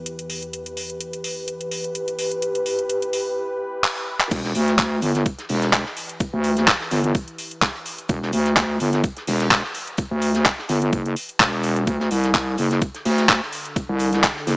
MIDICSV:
0, 0, Header, 1, 4, 480
1, 0, Start_track
1, 0, Key_signature, 1, "minor"
1, 0, Tempo, 472441
1, 543, Time_signature, 4, 2, 24, 8
1, 14798, End_track
2, 0, Start_track
2, 0, Title_t, "Analog synth pad"
2, 0, Program_c, 0, 89
2, 0, Note_on_c, 0, 40, 80
2, 0, Note_on_c, 0, 52, 70
2, 0, Note_on_c, 0, 67, 71
2, 0, Note_on_c, 0, 71, 85
2, 4342, Note_off_c, 0, 40, 0
2, 4342, Note_off_c, 0, 52, 0
2, 4342, Note_off_c, 0, 67, 0
2, 4342, Note_off_c, 0, 71, 0
2, 4382, Note_on_c, 0, 67, 74
2, 4382, Note_on_c, 0, 71, 85
2, 4383, Note_on_c, 0, 52, 78
2, 4383, Note_on_c, 0, 64, 74
2, 12022, Note_off_c, 0, 52, 0
2, 12022, Note_off_c, 0, 64, 0
2, 12022, Note_off_c, 0, 67, 0
2, 12022, Note_off_c, 0, 71, 0
2, 12061, Note_on_c, 0, 62, 75
2, 12062, Note_on_c, 0, 50, 83
2, 12062, Note_on_c, 0, 66, 74
2, 12062, Note_on_c, 0, 69, 91
2, 14798, Note_off_c, 0, 50, 0
2, 14798, Note_off_c, 0, 62, 0
2, 14798, Note_off_c, 0, 66, 0
2, 14798, Note_off_c, 0, 69, 0
2, 14798, End_track
3, 0, Start_track
3, 0, Title_t, "Wobble bass"
3, 0, Program_c, 1, 39
3, 4382, Note_on_c, 1, 28, 100
3, 4605, Note_off_c, 1, 28, 0
3, 4623, Note_on_c, 1, 38, 101
3, 5085, Note_off_c, 1, 38, 0
3, 5102, Note_on_c, 1, 31, 94
3, 5325, Note_off_c, 1, 31, 0
3, 5583, Note_on_c, 1, 28, 97
3, 5932, Note_off_c, 1, 28, 0
3, 6434, Note_on_c, 1, 38, 96
3, 6766, Note_off_c, 1, 38, 0
3, 7023, Note_on_c, 1, 31, 97
3, 7245, Note_off_c, 1, 31, 0
3, 8223, Note_on_c, 1, 28, 101
3, 8445, Note_off_c, 1, 28, 0
3, 8463, Note_on_c, 1, 38, 98
3, 8925, Note_off_c, 1, 38, 0
3, 8942, Note_on_c, 1, 31, 101
3, 9165, Note_off_c, 1, 31, 0
3, 9423, Note_on_c, 1, 28, 100
3, 9772, Note_off_c, 1, 28, 0
3, 10273, Note_on_c, 1, 38, 95
3, 10605, Note_off_c, 1, 38, 0
3, 10862, Note_on_c, 1, 31, 100
3, 11085, Note_off_c, 1, 31, 0
3, 11102, Note_on_c, 1, 30, 97
3, 11325, Note_off_c, 1, 30, 0
3, 11582, Note_on_c, 1, 28, 99
3, 12045, Note_off_c, 1, 28, 0
3, 12062, Note_on_c, 1, 38, 100
3, 12285, Note_off_c, 1, 38, 0
3, 12302, Note_on_c, 1, 36, 99
3, 12765, Note_off_c, 1, 36, 0
3, 12782, Note_on_c, 1, 30, 102
3, 13005, Note_off_c, 1, 30, 0
3, 13263, Note_on_c, 1, 38, 102
3, 13612, Note_off_c, 1, 38, 0
3, 14113, Note_on_c, 1, 36, 92
3, 14445, Note_off_c, 1, 36, 0
3, 14703, Note_on_c, 1, 30, 97
3, 14798, Note_off_c, 1, 30, 0
3, 14798, End_track
4, 0, Start_track
4, 0, Title_t, "Drums"
4, 62, Note_on_c, 9, 42, 80
4, 163, Note_off_c, 9, 42, 0
4, 192, Note_on_c, 9, 42, 51
4, 293, Note_off_c, 9, 42, 0
4, 301, Note_on_c, 9, 46, 107
4, 403, Note_off_c, 9, 46, 0
4, 431, Note_on_c, 9, 42, 37
4, 533, Note_off_c, 9, 42, 0
4, 542, Note_on_c, 9, 42, 74
4, 643, Note_off_c, 9, 42, 0
4, 672, Note_on_c, 9, 42, 54
4, 774, Note_off_c, 9, 42, 0
4, 781, Note_on_c, 9, 46, 108
4, 883, Note_off_c, 9, 46, 0
4, 912, Note_on_c, 9, 42, 36
4, 1013, Note_off_c, 9, 42, 0
4, 1021, Note_on_c, 9, 42, 80
4, 1123, Note_off_c, 9, 42, 0
4, 1151, Note_on_c, 9, 42, 54
4, 1253, Note_off_c, 9, 42, 0
4, 1261, Note_on_c, 9, 46, 112
4, 1363, Note_off_c, 9, 46, 0
4, 1501, Note_on_c, 9, 42, 79
4, 1603, Note_off_c, 9, 42, 0
4, 1632, Note_on_c, 9, 42, 51
4, 1734, Note_off_c, 9, 42, 0
4, 1742, Note_on_c, 9, 46, 108
4, 1843, Note_off_c, 9, 46, 0
4, 1872, Note_on_c, 9, 42, 35
4, 1973, Note_off_c, 9, 42, 0
4, 1982, Note_on_c, 9, 42, 78
4, 2083, Note_off_c, 9, 42, 0
4, 2111, Note_on_c, 9, 42, 51
4, 2213, Note_off_c, 9, 42, 0
4, 2221, Note_on_c, 9, 46, 108
4, 2322, Note_off_c, 9, 46, 0
4, 2351, Note_on_c, 9, 42, 36
4, 2453, Note_off_c, 9, 42, 0
4, 2461, Note_on_c, 9, 42, 73
4, 2563, Note_off_c, 9, 42, 0
4, 2591, Note_on_c, 9, 42, 51
4, 2693, Note_off_c, 9, 42, 0
4, 2701, Note_on_c, 9, 46, 108
4, 2803, Note_off_c, 9, 46, 0
4, 2832, Note_on_c, 9, 42, 36
4, 2933, Note_off_c, 9, 42, 0
4, 2941, Note_on_c, 9, 42, 76
4, 3043, Note_off_c, 9, 42, 0
4, 3071, Note_on_c, 9, 42, 50
4, 3173, Note_off_c, 9, 42, 0
4, 3181, Note_on_c, 9, 46, 106
4, 3283, Note_off_c, 9, 46, 0
4, 3902, Note_on_c, 9, 39, 116
4, 4004, Note_off_c, 9, 39, 0
4, 4272, Note_on_c, 9, 39, 85
4, 4374, Note_off_c, 9, 39, 0
4, 4379, Note_on_c, 9, 82, 92
4, 4382, Note_on_c, 9, 36, 125
4, 4382, Note_on_c, 9, 42, 71
4, 4382, Note_on_c, 9, 49, 103
4, 4481, Note_off_c, 9, 82, 0
4, 4484, Note_off_c, 9, 36, 0
4, 4484, Note_off_c, 9, 42, 0
4, 4484, Note_off_c, 9, 49, 0
4, 4512, Note_on_c, 9, 38, 45
4, 4613, Note_off_c, 9, 38, 0
4, 4621, Note_on_c, 9, 46, 107
4, 4624, Note_on_c, 9, 82, 71
4, 4723, Note_off_c, 9, 46, 0
4, 4726, Note_off_c, 9, 82, 0
4, 4752, Note_on_c, 9, 42, 54
4, 4755, Note_on_c, 9, 38, 44
4, 4854, Note_off_c, 9, 42, 0
4, 4856, Note_off_c, 9, 38, 0
4, 4859, Note_on_c, 9, 82, 91
4, 4860, Note_on_c, 9, 38, 121
4, 4862, Note_on_c, 9, 36, 127
4, 4862, Note_on_c, 9, 42, 69
4, 4864, Note_on_c, 9, 39, 127
4, 4961, Note_off_c, 9, 38, 0
4, 4961, Note_off_c, 9, 82, 0
4, 4963, Note_off_c, 9, 42, 0
4, 4964, Note_off_c, 9, 36, 0
4, 4966, Note_off_c, 9, 39, 0
4, 5099, Note_on_c, 9, 82, 66
4, 5102, Note_on_c, 9, 46, 103
4, 5201, Note_off_c, 9, 82, 0
4, 5203, Note_off_c, 9, 46, 0
4, 5226, Note_on_c, 9, 38, 43
4, 5232, Note_on_c, 9, 42, 58
4, 5328, Note_off_c, 9, 38, 0
4, 5334, Note_off_c, 9, 42, 0
4, 5342, Note_on_c, 9, 36, 117
4, 5342, Note_on_c, 9, 42, 71
4, 5342, Note_on_c, 9, 82, 86
4, 5444, Note_off_c, 9, 36, 0
4, 5444, Note_off_c, 9, 42, 0
4, 5444, Note_off_c, 9, 82, 0
4, 5471, Note_on_c, 9, 38, 39
4, 5472, Note_on_c, 9, 42, 39
4, 5572, Note_off_c, 9, 38, 0
4, 5574, Note_off_c, 9, 42, 0
4, 5577, Note_on_c, 9, 46, 75
4, 5582, Note_off_c, 9, 46, 0
4, 5582, Note_on_c, 9, 46, 108
4, 5684, Note_off_c, 9, 46, 0
4, 5711, Note_on_c, 9, 38, 57
4, 5712, Note_on_c, 9, 42, 53
4, 5813, Note_off_c, 9, 38, 0
4, 5814, Note_off_c, 9, 42, 0
4, 5817, Note_on_c, 9, 38, 119
4, 5822, Note_on_c, 9, 36, 118
4, 5824, Note_on_c, 9, 39, 122
4, 5828, Note_on_c, 9, 82, 85
4, 5918, Note_off_c, 9, 38, 0
4, 5924, Note_off_c, 9, 36, 0
4, 5926, Note_off_c, 9, 39, 0
4, 5930, Note_off_c, 9, 82, 0
4, 5952, Note_on_c, 9, 38, 48
4, 6053, Note_off_c, 9, 38, 0
4, 6062, Note_on_c, 9, 46, 108
4, 6063, Note_on_c, 9, 82, 67
4, 6163, Note_off_c, 9, 46, 0
4, 6165, Note_off_c, 9, 82, 0
4, 6192, Note_on_c, 9, 42, 59
4, 6293, Note_off_c, 9, 42, 0
4, 6300, Note_on_c, 9, 82, 78
4, 6302, Note_on_c, 9, 42, 67
4, 6303, Note_on_c, 9, 36, 121
4, 6402, Note_off_c, 9, 82, 0
4, 6403, Note_off_c, 9, 42, 0
4, 6404, Note_off_c, 9, 36, 0
4, 6540, Note_on_c, 9, 82, 63
4, 6542, Note_on_c, 9, 46, 110
4, 6642, Note_off_c, 9, 82, 0
4, 6643, Note_off_c, 9, 46, 0
4, 6672, Note_on_c, 9, 42, 56
4, 6675, Note_on_c, 9, 38, 55
4, 6774, Note_off_c, 9, 42, 0
4, 6776, Note_off_c, 9, 38, 0
4, 6782, Note_on_c, 9, 42, 69
4, 6783, Note_on_c, 9, 36, 127
4, 6784, Note_on_c, 9, 38, 113
4, 6784, Note_on_c, 9, 39, 127
4, 6784, Note_on_c, 9, 82, 80
4, 6884, Note_off_c, 9, 36, 0
4, 6884, Note_off_c, 9, 42, 0
4, 6886, Note_off_c, 9, 38, 0
4, 6886, Note_off_c, 9, 39, 0
4, 6886, Note_off_c, 9, 82, 0
4, 6914, Note_on_c, 9, 38, 54
4, 7015, Note_off_c, 9, 38, 0
4, 7017, Note_on_c, 9, 82, 68
4, 7022, Note_on_c, 9, 38, 51
4, 7022, Note_on_c, 9, 46, 108
4, 7119, Note_off_c, 9, 82, 0
4, 7124, Note_off_c, 9, 38, 0
4, 7124, Note_off_c, 9, 46, 0
4, 7153, Note_on_c, 9, 42, 56
4, 7254, Note_off_c, 9, 42, 0
4, 7262, Note_on_c, 9, 36, 124
4, 7262, Note_on_c, 9, 42, 67
4, 7274, Note_on_c, 9, 82, 85
4, 7364, Note_off_c, 9, 36, 0
4, 7364, Note_off_c, 9, 42, 0
4, 7375, Note_off_c, 9, 82, 0
4, 7393, Note_on_c, 9, 42, 38
4, 7494, Note_off_c, 9, 42, 0
4, 7502, Note_on_c, 9, 46, 110
4, 7510, Note_on_c, 9, 82, 74
4, 7604, Note_off_c, 9, 46, 0
4, 7612, Note_off_c, 9, 82, 0
4, 7632, Note_on_c, 9, 42, 54
4, 7734, Note_off_c, 9, 42, 0
4, 7742, Note_on_c, 9, 36, 122
4, 7742, Note_on_c, 9, 82, 83
4, 7745, Note_on_c, 9, 39, 121
4, 7749, Note_on_c, 9, 38, 106
4, 7844, Note_off_c, 9, 36, 0
4, 7844, Note_off_c, 9, 82, 0
4, 7846, Note_off_c, 9, 39, 0
4, 7851, Note_off_c, 9, 38, 0
4, 7880, Note_on_c, 9, 42, 41
4, 7981, Note_off_c, 9, 42, 0
4, 7982, Note_on_c, 9, 46, 107
4, 7984, Note_on_c, 9, 82, 72
4, 8084, Note_off_c, 9, 46, 0
4, 8086, Note_off_c, 9, 82, 0
4, 8112, Note_on_c, 9, 42, 54
4, 8214, Note_off_c, 9, 42, 0
4, 8220, Note_on_c, 9, 82, 82
4, 8222, Note_on_c, 9, 36, 126
4, 8222, Note_on_c, 9, 42, 65
4, 8322, Note_off_c, 9, 82, 0
4, 8323, Note_off_c, 9, 42, 0
4, 8324, Note_off_c, 9, 36, 0
4, 8358, Note_on_c, 9, 38, 47
4, 8459, Note_off_c, 9, 38, 0
4, 8460, Note_on_c, 9, 82, 67
4, 8462, Note_on_c, 9, 46, 112
4, 8562, Note_off_c, 9, 82, 0
4, 8563, Note_off_c, 9, 46, 0
4, 8590, Note_on_c, 9, 38, 46
4, 8592, Note_on_c, 9, 42, 51
4, 8692, Note_off_c, 9, 38, 0
4, 8694, Note_off_c, 9, 42, 0
4, 8702, Note_on_c, 9, 36, 127
4, 8702, Note_on_c, 9, 42, 66
4, 8704, Note_on_c, 9, 38, 125
4, 8704, Note_on_c, 9, 39, 127
4, 8704, Note_on_c, 9, 82, 91
4, 8803, Note_off_c, 9, 42, 0
4, 8804, Note_off_c, 9, 36, 0
4, 8805, Note_off_c, 9, 38, 0
4, 8806, Note_off_c, 9, 39, 0
4, 8806, Note_off_c, 9, 82, 0
4, 8942, Note_on_c, 9, 46, 111
4, 8942, Note_on_c, 9, 82, 71
4, 9043, Note_off_c, 9, 46, 0
4, 9043, Note_off_c, 9, 82, 0
4, 9072, Note_on_c, 9, 38, 47
4, 9072, Note_on_c, 9, 42, 52
4, 9174, Note_off_c, 9, 38, 0
4, 9174, Note_off_c, 9, 42, 0
4, 9182, Note_on_c, 9, 36, 127
4, 9182, Note_on_c, 9, 42, 66
4, 9183, Note_on_c, 9, 82, 93
4, 9283, Note_off_c, 9, 42, 0
4, 9284, Note_off_c, 9, 36, 0
4, 9285, Note_off_c, 9, 82, 0
4, 9313, Note_on_c, 9, 42, 38
4, 9315, Note_on_c, 9, 38, 37
4, 9414, Note_off_c, 9, 42, 0
4, 9417, Note_off_c, 9, 38, 0
4, 9422, Note_on_c, 9, 46, 114
4, 9429, Note_off_c, 9, 46, 0
4, 9429, Note_on_c, 9, 46, 76
4, 9530, Note_off_c, 9, 46, 0
4, 9552, Note_on_c, 9, 42, 52
4, 9555, Note_on_c, 9, 38, 52
4, 9654, Note_off_c, 9, 42, 0
4, 9657, Note_off_c, 9, 38, 0
4, 9660, Note_on_c, 9, 38, 108
4, 9662, Note_on_c, 9, 36, 125
4, 9664, Note_on_c, 9, 39, 121
4, 9664, Note_on_c, 9, 82, 88
4, 9761, Note_off_c, 9, 38, 0
4, 9764, Note_off_c, 9, 36, 0
4, 9765, Note_off_c, 9, 82, 0
4, 9766, Note_off_c, 9, 39, 0
4, 9799, Note_on_c, 9, 38, 47
4, 9899, Note_on_c, 9, 82, 69
4, 9901, Note_off_c, 9, 38, 0
4, 9902, Note_on_c, 9, 46, 112
4, 10001, Note_off_c, 9, 82, 0
4, 10004, Note_off_c, 9, 46, 0
4, 10032, Note_on_c, 9, 42, 52
4, 10134, Note_off_c, 9, 42, 0
4, 10137, Note_on_c, 9, 82, 92
4, 10142, Note_on_c, 9, 36, 124
4, 10142, Note_on_c, 9, 42, 63
4, 10239, Note_off_c, 9, 82, 0
4, 10243, Note_off_c, 9, 42, 0
4, 10244, Note_off_c, 9, 36, 0
4, 10379, Note_on_c, 9, 82, 72
4, 10381, Note_on_c, 9, 46, 112
4, 10481, Note_off_c, 9, 82, 0
4, 10483, Note_off_c, 9, 46, 0
4, 10509, Note_on_c, 9, 38, 61
4, 10512, Note_on_c, 9, 42, 51
4, 10610, Note_off_c, 9, 38, 0
4, 10612, Note_on_c, 9, 38, 123
4, 10614, Note_off_c, 9, 42, 0
4, 10618, Note_on_c, 9, 82, 89
4, 10622, Note_on_c, 9, 36, 127
4, 10622, Note_on_c, 9, 42, 65
4, 10624, Note_on_c, 9, 39, 123
4, 10714, Note_off_c, 9, 38, 0
4, 10720, Note_off_c, 9, 82, 0
4, 10723, Note_off_c, 9, 42, 0
4, 10724, Note_off_c, 9, 36, 0
4, 10726, Note_off_c, 9, 39, 0
4, 10754, Note_on_c, 9, 38, 57
4, 10855, Note_off_c, 9, 38, 0
4, 10859, Note_on_c, 9, 82, 73
4, 10860, Note_on_c, 9, 38, 49
4, 10861, Note_on_c, 9, 46, 110
4, 10961, Note_off_c, 9, 82, 0
4, 10962, Note_off_c, 9, 38, 0
4, 10963, Note_off_c, 9, 46, 0
4, 10992, Note_on_c, 9, 42, 51
4, 11094, Note_off_c, 9, 42, 0
4, 11102, Note_on_c, 9, 36, 127
4, 11102, Note_on_c, 9, 42, 65
4, 11104, Note_on_c, 9, 82, 89
4, 11204, Note_off_c, 9, 36, 0
4, 11204, Note_off_c, 9, 42, 0
4, 11206, Note_off_c, 9, 82, 0
4, 11232, Note_on_c, 9, 42, 35
4, 11334, Note_off_c, 9, 42, 0
4, 11342, Note_on_c, 9, 46, 107
4, 11349, Note_on_c, 9, 82, 70
4, 11443, Note_off_c, 9, 46, 0
4, 11450, Note_off_c, 9, 82, 0
4, 11472, Note_on_c, 9, 42, 52
4, 11573, Note_off_c, 9, 42, 0
4, 11579, Note_on_c, 9, 82, 83
4, 11582, Note_on_c, 9, 36, 127
4, 11583, Note_on_c, 9, 38, 121
4, 11584, Note_on_c, 9, 39, 118
4, 11681, Note_off_c, 9, 82, 0
4, 11683, Note_off_c, 9, 36, 0
4, 11684, Note_off_c, 9, 38, 0
4, 11686, Note_off_c, 9, 39, 0
4, 11711, Note_on_c, 9, 42, 40
4, 11812, Note_off_c, 9, 42, 0
4, 11817, Note_on_c, 9, 82, 68
4, 11822, Note_on_c, 9, 46, 106
4, 11918, Note_off_c, 9, 82, 0
4, 11924, Note_off_c, 9, 46, 0
4, 11952, Note_on_c, 9, 42, 52
4, 12053, Note_off_c, 9, 42, 0
4, 12062, Note_on_c, 9, 36, 117
4, 12062, Note_on_c, 9, 42, 60
4, 12062, Note_on_c, 9, 82, 91
4, 12164, Note_off_c, 9, 36, 0
4, 12164, Note_off_c, 9, 42, 0
4, 12164, Note_off_c, 9, 82, 0
4, 12193, Note_on_c, 9, 38, 54
4, 12295, Note_off_c, 9, 38, 0
4, 12302, Note_on_c, 9, 46, 107
4, 12306, Note_on_c, 9, 82, 64
4, 12404, Note_off_c, 9, 46, 0
4, 12407, Note_off_c, 9, 82, 0
4, 12431, Note_on_c, 9, 38, 49
4, 12432, Note_on_c, 9, 42, 51
4, 12533, Note_off_c, 9, 38, 0
4, 12534, Note_off_c, 9, 42, 0
4, 12538, Note_on_c, 9, 38, 107
4, 12539, Note_on_c, 9, 82, 88
4, 12542, Note_on_c, 9, 36, 122
4, 12542, Note_on_c, 9, 42, 64
4, 12545, Note_on_c, 9, 39, 117
4, 12640, Note_off_c, 9, 38, 0
4, 12640, Note_off_c, 9, 82, 0
4, 12644, Note_off_c, 9, 36, 0
4, 12644, Note_off_c, 9, 42, 0
4, 12646, Note_off_c, 9, 39, 0
4, 12779, Note_on_c, 9, 82, 73
4, 12782, Note_on_c, 9, 46, 107
4, 12880, Note_off_c, 9, 82, 0
4, 12883, Note_off_c, 9, 46, 0
4, 12912, Note_on_c, 9, 42, 53
4, 12913, Note_on_c, 9, 38, 49
4, 13014, Note_off_c, 9, 38, 0
4, 13014, Note_off_c, 9, 42, 0
4, 13021, Note_on_c, 9, 82, 94
4, 13022, Note_on_c, 9, 36, 126
4, 13022, Note_on_c, 9, 42, 65
4, 13122, Note_off_c, 9, 82, 0
4, 13124, Note_off_c, 9, 36, 0
4, 13124, Note_off_c, 9, 42, 0
4, 13152, Note_on_c, 9, 38, 38
4, 13152, Note_on_c, 9, 42, 37
4, 13254, Note_off_c, 9, 38, 0
4, 13254, Note_off_c, 9, 42, 0
4, 13262, Note_on_c, 9, 46, 106
4, 13266, Note_off_c, 9, 46, 0
4, 13266, Note_on_c, 9, 46, 77
4, 13368, Note_off_c, 9, 46, 0
4, 13391, Note_on_c, 9, 38, 62
4, 13392, Note_on_c, 9, 42, 49
4, 13492, Note_off_c, 9, 38, 0
4, 13494, Note_off_c, 9, 42, 0
4, 13498, Note_on_c, 9, 38, 115
4, 13502, Note_on_c, 9, 36, 119
4, 13504, Note_on_c, 9, 39, 118
4, 13507, Note_on_c, 9, 82, 79
4, 13599, Note_off_c, 9, 38, 0
4, 13604, Note_off_c, 9, 36, 0
4, 13606, Note_off_c, 9, 39, 0
4, 13609, Note_off_c, 9, 82, 0
4, 13636, Note_on_c, 9, 38, 43
4, 13738, Note_off_c, 9, 38, 0
4, 13742, Note_on_c, 9, 46, 103
4, 13745, Note_on_c, 9, 82, 70
4, 13843, Note_off_c, 9, 46, 0
4, 13846, Note_off_c, 9, 82, 0
4, 13873, Note_on_c, 9, 42, 51
4, 13974, Note_off_c, 9, 42, 0
4, 13982, Note_on_c, 9, 36, 115
4, 13982, Note_on_c, 9, 42, 65
4, 13987, Note_on_c, 9, 82, 92
4, 14084, Note_off_c, 9, 36, 0
4, 14084, Note_off_c, 9, 42, 0
4, 14089, Note_off_c, 9, 82, 0
4, 14219, Note_on_c, 9, 82, 71
4, 14222, Note_on_c, 9, 46, 102
4, 14321, Note_off_c, 9, 82, 0
4, 14324, Note_off_c, 9, 46, 0
4, 14353, Note_on_c, 9, 42, 53
4, 14358, Note_on_c, 9, 38, 63
4, 14454, Note_off_c, 9, 42, 0
4, 14459, Note_off_c, 9, 38, 0
4, 14462, Note_on_c, 9, 36, 121
4, 14462, Note_on_c, 9, 82, 90
4, 14463, Note_on_c, 9, 42, 69
4, 14465, Note_on_c, 9, 39, 121
4, 14469, Note_on_c, 9, 38, 122
4, 14563, Note_off_c, 9, 82, 0
4, 14564, Note_off_c, 9, 36, 0
4, 14564, Note_off_c, 9, 42, 0
4, 14567, Note_off_c, 9, 39, 0
4, 14571, Note_off_c, 9, 38, 0
4, 14594, Note_on_c, 9, 38, 53
4, 14696, Note_off_c, 9, 38, 0
4, 14701, Note_on_c, 9, 38, 48
4, 14703, Note_on_c, 9, 46, 100
4, 14705, Note_on_c, 9, 82, 60
4, 14798, Note_off_c, 9, 38, 0
4, 14798, Note_off_c, 9, 46, 0
4, 14798, Note_off_c, 9, 82, 0
4, 14798, End_track
0, 0, End_of_file